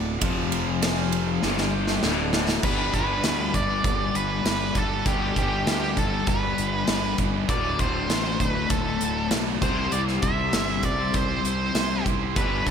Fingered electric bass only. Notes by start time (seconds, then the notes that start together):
Already playing: D1
0.22 F1
1.43 G1
2.03 D1
2.63 G1
2.93 G1
3.24 D2
3.54 G1
3.84 G1
4.14 G1
4.45 G1
4.76 G1
5.06 G1
5.36 G1
5.66 D2
5.97 G1
6.27 G1
6.58 G1
6.88 G1
7.18 G1
7.49 D1
7.79 D1
8.09 A1
8.41 D1
8.70 D1
9.01 D1
9.31 B1
9.62 C2
9.92 C2
10.23 C2
10.54 G1
10.83 C2
11.14 C2
11.43 C2
11.75 C2
12.06 C2
12.36 G1
12.66 G1